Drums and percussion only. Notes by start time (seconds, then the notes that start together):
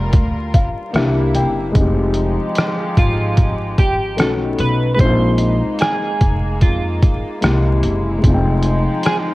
0.13 kick, closed hi-hat
0.54 kick, closed hi-hat
0.94 cross-stick, closed hi-hat
1.35 closed hi-hat
1.75 kick, closed hi-hat
2.14 closed hi-hat
2.55 cross-stick, closed hi-hat
2.97 kick, closed hi-hat
3.37 kick, closed hi-hat
3.78 kick, closed hi-hat
4.18 cross-stick, closed hi-hat
4.59 closed hi-hat
4.99 kick, closed hi-hat
5.38 closed hi-hat
5.79 cross-stick, closed hi-hat
6.21 kick, closed hi-hat
6.61 kick, closed hi-hat
7.02 kick, closed hi-hat
7.42 cross-stick, closed hi-hat
7.83 closed hi-hat
8.23 kick, closed hi-hat
8.62 closed hi-hat
9.03 cross-stick, closed hi-hat